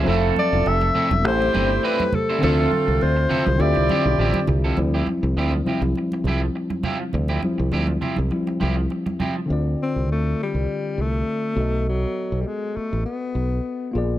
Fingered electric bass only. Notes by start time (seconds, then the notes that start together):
0.06 F1
0.53 E1
0.66 F1
1.11 E1
1.24 A1
1.55 G1
2.43 D2
2.88 C2
3.03 D2
3.47 C2
3.60 D2
3.77 C2
4.05 B1
4.18 A1
4.48 C2
4.78 D2
5.23 C2
5.37 D2
5.81 C2
6.24 C2
7.14 D2
7.60 C2
7.73 D2
8.18 C2
8.62 C2
9.50 D2
9.96 C2
10.09 D2
10.54 C2
10.98 C2
11.56 B1
12.32 B1
12.77 muted fingered electric bass stroke
12.93 A1
13.35 B1
13.95 A#1